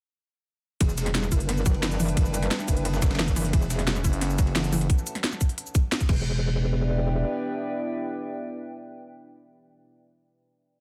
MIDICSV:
0, 0, Header, 1, 7, 480
1, 0, Start_track
1, 0, Tempo, 340909
1, 1135, Time_signature, 4, 2, 24, 8
1, 15208, End_track
2, 0, Start_track
2, 0, Title_t, "Ambient pad"
2, 0, Program_c, 0, 92
2, 1135, Note_on_c, 0, 62, 97
2, 1187, Note_on_c, 0, 71, 83
2, 1755, Note_on_c, 0, 76, 76
2, 1817, Note_on_c, 0, 79, 75
2, 4974, Note_on_c, 0, 61, 95
2, 4975, Note_off_c, 0, 62, 0
2, 4977, Note_off_c, 0, 79, 0
2, 5259, Note_on_c, 0, 69, 76
2, 5436, Note_on_c, 0, 78, 89
2, 5743, Note_off_c, 0, 76, 0
2, 5744, Note_off_c, 0, 71, 0
2, 5792, Note_on_c, 0, 81, 80
2, 6894, Note_off_c, 0, 81, 0
2, 6895, Note_off_c, 0, 61, 0
2, 6895, Note_off_c, 0, 69, 0
2, 6895, Note_off_c, 0, 78, 0
2, 8574, Note_on_c, 0, 62, 82
2, 8647, Note_on_c, 0, 71, 84
2, 8959, Note_on_c, 0, 76, 81
2, 9031, Note_on_c, 0, 79, 81
2, 13725, Note_off_c, 0, 62, 0
2, 13725, Note_off_c, 0, 71, 0
2, 13725, Note_off_c, 0, 76, 0
2, 13725, Note_off_c, 0, 79, 0
2, 15208, End_track
3, 0, Start_track
3, 0, Title_t, "Analog synth pad"
3, 0, Program_c, 1, 89
3, 1133, Note_on_c, 1, 62, 77
3, 1134, Note_on_c, 1, 55, 79
3, 1134, Note_on_c, 1, 64, 77
3, 1135, Note_on_c, 1, 71, 88
3, 4936, Note_off_c, 1, 55, 0
3, 4936, Note_off_c, 1, 62, 0
3, 4936, Note_off_c, 1, 64, 0
3, 4936, Note_off_c, 1, 71, 0
3, 4975, Note_on_c, 1, 61, 75
3, 4975, Note_on_c, 1, 66, 73
3, 4976, Note_on_c, 1, 57, 81
3, 4976, Note_on_c, 1, 73, 88
3, 6876, Note_off_c, 1, 57, 0
3, 6876, Note_off_c, 1, 61, 0
3, 6876, Note_off_c, 1, 66, 0
3, 6876, Note_off_c, 1, 73, 0
3, 8573, Note_on_c, 1, 64, 81
3, 8573, Note_on_c, 1, 74, 98
3, 8574, Note_on_c, 1, 59, 88
3, 8574, Note_on_c, 1, 67, 78
3, 13724, Note_off_c, 1, 64, 0
3, 13724, Note_off_c, 1, 74, 0
3, 13725, Note_off_c, 1, 59, 0
3, 13725, Note_off_c, 1, 67, 0
3, 15208, End_track
4, 0, Start_track
4, 0, Title_t, "Synth arpeggio sound"
4, 0, Program_c, 2, 84
4, 1135, Note_on_c, 2, 52, 102
4, 1243, Note_off_c, 2, 52, 0
4, 1615, Note_on_c, 2, 55, 78
4, 1777, Note_off_c, 2, 55, 0
4, 1855, Note_on_c, 2, 64, 80
4, 2017, Note_off_c, 2, 64, 0
4, 2095, Note_on_c, 2, 59, 80
4, 2257, Note_off_c, 2, 59, 0
4, 2334, Note_on_c, 2, 54, 105
4, 2400, Note_off_c, 2, 54, 0
4, 2574, Note_on_c, 2, 52, 84
4, 2683, Note_off_c, 2, 52, 0
4, 2815, Note_on_c, 2, 52, 101
4, 2923, Note_off_c, 2, 52, 0
4, 3055, Note_on_c, 2, 52, 100
4, 3163, Note_off_c, 2, 52, 0
4, 3535, Note_on_c, 2, 55, 76
4, 3697, Note_off_c, 2, 55, 0
4, 3775, Note_on_c, 2, 64, 78
4, 3937, Note_off_c, 2, 64, 0
4, 4015, Note_on_c, 2, 59, 81
4, 4177, Note_off_c, 2, 59, 0
4, 4255, Note_on_c, 2, 54, 104
4, 4320, Note_off_c, 2, 54, 0
4, 4495, Note_on_c, 2, 52, 80
4, 4603, Note_off_c, 2, 52, 0
4, 4734, Note_on_c, 2, 52, 98
4, 4843, Note_off_c, 2, 52, 0
4, 4974, Note_on_c, 2, 52, 105
4, 5083, Note_off_c, 2, 52, 0
4, 5454, Note_on_c, 2, 54, 81
4, 5617, Note_off_c, 2, 54, 0
4, 5694, Note_on_c, 2, 64, 81
4, 5857, Note_off_c, 2, 64, 0
4, 5934, Note_on_c, 2, 59, 84
4, 6097, Note_off_c, 2, 59, 0
4, 6175, Note_on_c, 2, 54, 102
4, 6240, Note_off_c, 2, 54, 0
4, 6414, Note_on_c, 2, 52, 83
4, 6523, Note_off_c, 2, 52, 0
4, 6654, Note_on_c, 2, 52, 102
4, 6762, Note_off_c, 2, 52, 0
4, 8575, Note_on_c, 2, 52, 96
4, 9021, Note_off_c, 2, 52, 0
4, 15208, End_track
5, 0, Start_track
5, 0, Title_t, "FM bass"
5, 0, Program_c, 3, 39
5, 5694, Note_on_c, 3, 30, 97
5, 6876, Note_off_c, 3, 30, 0
5, 15208, End_track
6, 0, Start_track
6, 0, Title_t, "Wobble bass"
6, 0, Program_c, 4, 39
6, 1135, Note_on_c, 4, 28, 102
6, 1836, Note_off_c, 4, 28, 0
6, 1856, Note_on_c, 4, 30, 98
6, 3036, Note_off_c, 4, 30, 0
6, 3056, Note_on_c, 4, 30, 95
6, 3516, Note_off_c, 4, 30, 0
6, 3775, Note_on_c, 4, 30, 95
6, 4956, Note_off_c, 4, 30, 0
6, 4975, Note_on_c, 4, 28, 100
6, 5676, Note_off_c, 4, 28, 0
6, 8575, Note_on_c, 4, 28, 102
6, 10199, Note_off_c, 4, 28, 0
6, 15208, End_track
7, 0, Start_track
7, 0, Title_t, "Drums"
7, 1135, Note_on_c, 9, 36, 112
7, 1135, Note_on_c, 9, 42, 103
7, 1135, Note_on_c, 9, 51, 90
7, 1255, Note_on_c, 9, 69, 28
7, 1276, Note_off_c, 9, 36, 0
7, 1276, Note_off_c, 9, 42, 0
7, 1276, Note_off_c, 9, 51, 0
7, 1375, Note_off_c, 9, 69, 0
7, 1375, Note_on_c, 9, 42, 73
7, 1375, Note_on_c, 9, 69, 61
7, 1376, Note_on_c, 9, 38, 47
7, 1376, Note_on_c, 9, 51, 73
7, 1495, Note_off_c, 9, 42, 0
7, 1495, Note_on_c, 9, 40, 40
7, 1495, Note_on_c, 9, 42, 41
7, 1516, Note_off_c, 9, 38, 0
7, 1516, Note_off_c, 9, 51, 0
7, 1516, Note_off_c, 9, 69, 0
7, 1615, Note_off_c, 9, 42, 0
7, 1615, Note_on_c, 9, 38, 116
7, 1615, Note_on_c, 9, 42, 92
7, 1616, Note_off_c, 9, 38, 0
7, 1616, Note_on_c, 9, 38, 118
7, 1616, Note_on_c, 9, 51, 87
7, 1635, Note_off_c, 9, 40, 0
7, 1735, Note_on_c, 9, 40, 39
7, 1735, Note_on_c, 9, 69, 29
7, 1736, Note_off_c, 9, 51, 0
7, 1736, Note_on_c, 9, 51, 46
7, 1756, Note_off_c, 9, 38, 0
7, 1756, Note_off_c, 9, 42, 0
7, 1855, Note_off_c, 9, 69, 0
7, 1855, Note_on_c, 9, 36, 62
7, 1855, Note_on_c, 9, 42, 70
7, 1855, Note_on_c, 9, 69, 63
7, 1856, Note_off_c, 9, 51, 0
7, 1856, Note_on_c, 9, 51, 71
7, 1876, Note_off_c, 9, 40, 0
7, 1975, Note_off_c, 9, 42, 0
7, 1975, Note_on_c, 9, 42, 38
7, 1996, Note_off_c, 9, 36, 0
7, 1996, Note_off_c, 9, 51, 0
7, 1996, Note_off_c, 9, 69, 0
7, 2095, Note_off_c, 9, 42, 0
7, 2095, Note_on_c, 9, 40, 37
7, 2095, Note_on_c, 9, 42, 98
7, 2096, Note_on_c, 9, 51, 90
7, 2215, Note_on_c, 9, 69, 27
7, 2236, Note_off_c, 9, 40, 0
7, 2236, Note_off_c, 9, 42, 0
7, 2237, Note_off_c, 9, 51, 0
7, 2334, Note_off_c, 9, 69, 0
7, 2334, Note_on_c, 9, 42, 73
7, 2334, Note_on_c, 9, 69, 63
7, 2335, Note_on_c, 9, 36, 110
7, 2336, Note_on_c, 9, 51, 68
7, 2456, Note_off_c, 9, 51, 0
7, 2456, Note_on_c, 9, 51, 44
7, 2475, Note_off_c, 9, 42, 0
7, 2475, Note_off_c, 9, 69, 0
7, 2476, Note_off_c, 9, 36, 0
7, 2575, Note_on_c, 9, 38, 123
7, 2575, Note_on_c, 9, 42, 99
7, 2576, Note_off_c, 9, 38, 0
7, 2576, Note_off_c, 9, 51, 0
7, 2576, Note_on_c, 9, 38, 118
7, 2576, Note_on_c, 9, 51, 89
7, 2695, Note_off_c, 9, 42, 0
7, 2695, Note_on_c, 9, 42, 40
7, 2695, Note_on_c, 9, 69, 29
7, 2696, Note_off_c, 9, 38, 0
7, 2696, Note_on_c, 9, 38, 42
7, 2717, Note_off_c, 9, 51, 0
7, 2815, Note_off_c, 9, 69, 0
7, 2815, Note_on_c, 9, 46, 78
7, 2815, Note_on_c, 9, 69, 62
7, 2816, Note_on_c, 9, 51, 67
7, 2836, Note_off_c, 9, 38, 0
7, 2836, Note_off_c, 9, 42, 0
7, 2935, Note_on_c, 9, 42, 39
7, 2936, Note_off_c, 9, 51, 0
7, 2936, Note_on_c, 9, 51, 46
7, 2956, Note_off_c, 9, 46, 0
7, 2956, Note_off_c, 9, 69, 0
7, 3055, Note_off_c, 9, 42, 0
7, 3055, Note_on_c, 9, 36, 117
7, 3055, Note_on_c, 9, 42, 99
7, 3056, Note_off_c, 9, 51, 0
7, 3056, Note_on_c, 9, 51, 94
7, 3175, Note_on_c, 9, 69, 27
7, 3195, Note_off_c, 9, 42, 0
7, 3196, Note_off_c, 9, 36, 0
7, 3197, Note_off_c, 9, 51, 0
7, 3295, Note_off_c, 9, 69, 0
7, 3295, Note_on_c, 9, 42, 67
7, 3295, Note_on_c, 9, 69, 61
7, 3296, Note_on_c, 9, 51, 68
7, 3415, Note_off_c, 9, 42, 0
7, 3415, Note_on_c, 9, 40, 39
7, 3415, Note_on_c, 9, 42, 38
7, 3436, Note_off_c, 9, 51, 0
7, 3436, Note_off_c, 9, 69, 0
7, 3535, Note_off_c, 9, 42, 0
7, 3535, Note_on_c, 9, 38, 120
7, 3535, Note_on_c, 9, 42, 95
7, 3535, Note_on_c, 9, 51, 85
7, 3556, Note_off_c, 9, 40, 0
7, 3655, Note_on_c, 9, 40, 36
7, 3655, Note_on_c, 9, 69, 27
7, 3675, Note_off_c, 9, 42, 0
7, 3676, Note_off_c, 9, 38, 0
7, 3676, Note_off_c, 9, 51, 0
7, 3775, Note_off_c, 9, 69, 0
7, 3775, Note_on_c, 9, 36, 65
7, 3775, Note_on_c, 9, 42, 67
7, 3775, Note_on_c, 9, 51, 73
7, 3775, Note_on_c, 9, 69, 58
7, 3796, Note_off_c, 9, 40, 0
7, 3895, Note_off_c, 9, 42, 0
7, 3895, Note_on_c, 9, 42, 39
7, 3916, Note_off_c, 9, 36, 0
7, 3916, Note_off_c, 9, 51, 0
7, 3916, Note_off_c, 9, 69, 0
7, 4015, Note_off_c, 9, 42, 0
7, 4015, Note_on_c, 9, 42, 96
7, 4015, Note_on_c, 9, 51, 87
7, 4135, Note_on_c, 9, 38, 52
7, 4135, Note_on_c, 9, 69, 26
7, 4156, Note_off_c, 9, 42, 0
7, 4156, Note_off_c, 9, 51, 0
7, 4255, Note_off_c, 9, 38, 0
7, 4255, Note_off_c, 9, 69, 0
7, 4255, Note_on_c, 9, 36, 114
7, 4255, Note_on_c, 9, 38, 103
7, 4255, Note_on_c, 9, 42, 66
7, 4255, Note_on_c, 9, 51, 80
7, 4255, Note_on_c, 9, 69, 62
7, 4375, Note_off_c, 9, 38, 0
7, 4375, Note_off_c, 9, 51, 0
7, 4375, Note_on_c, 9, 38, 92
7, 4375, Note_on_c, 9, 51, 72
7, 4396, Note_off_c, 9, 36, 0
7, 4396, Note_off_c, 9, 42, 0
7, 4396, Note_off_c, 9, 69, 0
7, 4435, Note_off_c, 9, 38, 0
7, 4435, Note_off_c, 9, 51, 0
7, 4435, Note_on_c, 9, 38, 92
7, 4435, Note_on_c, 9, 51, 70
7, 4495, Note_off_c, 9, 38, 0
7, 4495, Note_off_c, 9, 51, 0
7, 4495, Note_on_c, 9, 38, 120
7, 4495, Note_on_c, 9, 42, 99
7, 4495, Note_on_c, 9, 51, 92
7, 4615, Note_off_c, 9, 42, 0
7, 4615, Note_on_c, 9, 36, 65
7, 4615, Note_on_c, 9, 42, 40
7, 4615, Note_on_c, 9, 69, 28
7, 4636, Note_off_c, 9, 38, 0
7, 4636, Note_off_c, 9, 51, 0
7, 4735, Note_off_c, 9, 69, 0
7, 4735, Note_on_c, 9, 46, 83
7, 4735, Note_on_c, 9, 51, 70
7, 4735, Note_on_c, 9, 69, 60
7, 4756, Note_off_c, 9, 36, 0
7, 4756, Note_off_c, 9, 42, 0
7, 4855, Note_on_c, 9, 38, 37
7, 4855, Note_on_c, 9, 42, 38
7, 4876, Note_off_c, 9, 46, 0
7, 4876, Note_off_c, 9, 51, 0
7, 4876, Note_off_c, 9, 69, 0
7, 4974, Note_off_c, 9, 42, 0
7, 4974, Note_on_c, 9, 42, 96
7, 4975, Note_on_c, 9, 36, 124
7, 4975, Note_on_c, 9, 51, 96
7, 4996, Note_off_c, 9, 38, 0
7, 5095, Note_on_c, 9, 69, 27
7, 5115, Note_off_c, 9, 42, 0
7, 5116, Note_off_c, 9, 36, 0
7, 5116, Note_off_c, 9, 51, 0
7, 5214, Note_off_c, 9, 69, 0
7, 5214, Note_on_c, 9, 42, 65
7, 5214, Note_on_c, 9, 69, 59
7, 5216, Note_on_c, 9, 38, 49
7, 5216, Note_on_c, 9, 51, 70
7, 5334, Note_off_c, 9, 42, 0
7, 5334, Note_on_c, 9, 40, 38
7, 5334, Note_on_c, 9, 42, 37
7, 5355, Note_off_c, 9, 69, 0
7, 5356, Note_off_c, 9, 38, 0
7, 5356, Note_off_c, 9, 51, 0
7, 5454, Note_off_c, 9, 42, 0
7, 5454, Note_on_c, 9, 38, 120
7, 5454, Note_on_c, 9, 42, 94
7, 5456, Note_off_c, 9, 38, 0
7, 5456, Note_on_c, 9, 38, 115
7, 5456, Note_on_c, 9, 51, 89
7, 5475, Note_off_c, 9, 40, 0
7, 5574, Note_on_c, 9, 40, 38
7, 5574, Note_on_c, 9, 69, 27
7, 5576, Note_off_c, 9, 51, 0
7, 5576, Note_on_c, 9, 51, 46
7, 5595, Note_off_c, 9, 42, 0
7, 5597, Note_off_c, 9, 38, 0
7, 5694, Note_off_c, 9, 69, 0
7, 5694, Note_on_c, 9, 42, 64
7, 5694, Note_on_c, 9, 69, 60
7, 5695, Note_on_c, 9, 36, 68
7, 5696, Note_off_c, 9, 51, 0
7, 5696, Note_on_c, 9, 51, 73
7, 5715, Note_off_c, 9, 40, 0
7, 5814, Note_off_c, 9, 42, 0
7, 5814, Note_on_c, 9, 42, 37
7, 5835, Note_off_c, 9, 69, 0
7, 5836, Note_off_c, 9, 36, 0
7, 5837, Note_off_c, 9, 51, 0
7, 5934, Note_off_c, 9, 42, 0
7, 5934, Note_on_c, 9, 40, 36
7, 5934, Note_on_c, 9, 42, 97
7, 5936, Note_on_c, 9, 51, 90
7, 6054, Note_on_c, 9, 69, 26
7, 6074, Note_off_c, 9, 40, 0
7, 6074, Note_off_c, 9, 42, 0
7, 6077, Note_off_c, 9, 51, 0
7, 6174, Note_off_c, 9, 69, 0
7, 6174, Note_on_c, 9, 42, 67
7, 6174, Note_on_c, 9, 69, 58
7, 6175, Note_on_c, 9, 36, 110
7, 6175, Note_on_c, 9, 51, 73
7, 6295, Note_off_c, 9, 51, 0
7, 6295, Note_on_c, 9, 51, 45
7, 6314, Note_off_c, 9, 42, 0
7, 6314, Note_off_c, 9, 69, 0
7, 6316, Note_off_c, 9, 36, 0
7, 6413, Note_on_c, 9, 38, 124
7, 6413, Note_on_c, 9, 42, 91
7, 6415, Note_off_c, 9, 38, 0
7, 6415, Note_off_c, 9, 51, 0
7, 6415, Note_on_c, 9, 38, 118
7, 6415, Note_on_c, 9, 51, 92
7, 6534, Note_off_c, 9, 42, 0
7, 6534, Note_on_c, 9, 42, 38
7, 6534, Note_on_c, 9, 69, 27
7, 6535, Note_off_c, 9, 38, 0
7, 6535, Note_on_c, 9, 38, 43
7, 6555, Note_off_c, 9, 51, 0
7, 6654, Note_off_c, 9, 69, 0
7, 6654, Note_on_c, 9, 46, 83
7, 6654, Note_on_c, 9, 69, 62
7, 6655, Note_on_c, 9, 51, 66
7, 6674, Note_off_c, 9, 42, 0
7, 6676, Note_off_c, 9, 38, 0
7, 6774, Note_on_c, 9, 42, 35
7, 6775, Note_off_c, 9, 51, 0
7, 6775, Note_on_c, 9, 51, 46
7, 6795, Note_off_c, 9, 46, 0
7, 6795, Note_off_c, 9, 69, 0
7, 6895, Note_off_c, 9, 42, 0
7, 6895, Note_on_c, 9, 36, 121
7, 6895, Note_on_c, 9, 42, 90
7, 6916, Note_off_c, 9, 51, 0
7, 7014, Note_on_c, 9, 69, 29
7, 7035, Note_off_c, 9, 42, 0
7, 7036, Note_off_c, 9, 36, 0
7, 7134, Note_off_c, 9, 69, 0
7, 7134, Note_on_c, 9, 42, 62
7, 7134, Note_on_c, 9, 69, 58
7, 7254, Note_off_c, 9, 42, 0
7, 7254, Note_on_c, 9, 40, 37
7, 7254, Note_on_c, 9, 42, 38
7, 7275, Note_off_c, 9, 69, 0
7, 7374, Note_off_c, 9, 42, 0
7, 7374, Note_on_c, 9, 38, 122
7, 7374, Note_on_c, 9, 42, 90
7, 7395, Note_off_c, 9, 40, 0
7, 7495, Note_on_c, 9, 40, 36
7, 7495, Note_on_c, 9, 69, 28
7, 7515, Note_off_c, 9, 38, 0
7, 7515, Note_off_c, 9, 42, 0
7, 7614, Note_off_c, 9, 69, 0
7, 7614, Note_on_c, 9, 42, 65
7, 7614, Note_on_c, 9, 69, 59
7, 7615, Note_on_c, 9, 36, 64
7, 7635, Note_off_c, 9, 40, 0
7, 7734, Note_off_c, 9, 42, 0
7, 7734, Note_on_c, 9, 42, 36
7, 7755, Note_off_c, 9, 69, 0
7, 7756, Note_off_c, 9, 36, 0
7, 7855, Note_off_c, 9, 42, 0
7, 7855, Note_on_c, 9, 42, 95
7, 7975, Note_on_c, 9, 69, 27
7, 7995, Note_off_c, 9, 42, 0
7, 8095, Note_off_c, 9, 69, 0
7, 8095, Note_on_c, 9, 36, 112
7, 8095, Note_on_c, 9, 42, 66
7, 8095, Note_on_c, 9, 69, 57
7, 8236, Note_off_c, 9, 36, 0
7, 8236, Note_off_c, 9, 42, 0
7, 8236, Note_off_c, 9, 69, 0
7, 8335, Note_on_c, 9, 38, 123
7, 8335, Note_on_c, 9, 42, 86
7, 8455, Note_off_c, 9, 42, 0
7, 8455, Note_on_c, 9, 36, 66
7, 8455, Note_on_c, 9, 42, 36
7, 8455, Note_on_c, 9, 69, 28
7, 8476, Note_off_c, 9, 38, 0
7, 8575, Note_off_c, 9, 36, 0
7, 8575, Note_on_c, 9, 36, 119
7, 8575, Note_on_c, 9, 49, 92
7, 8596, Note_off_c, 9, 42, 0
7, 8596, Note_off_c, 9, 69, 0
7, 8716, Note_off_c, 9, 36, 0
7, 8716, Note_off_c, 9, 49, 0
7, 15208, End_track
0, 0, End_of_file